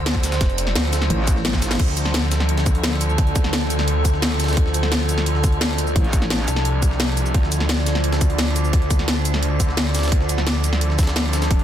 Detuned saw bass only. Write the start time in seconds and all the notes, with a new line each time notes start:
Already playing: D2
0.41 F1
0.75 D2
1.80 D2
3.18 D2
4.57 D2
6.48 C2
7.34 D2
8.73 D2
10.12 D2
11.51 F1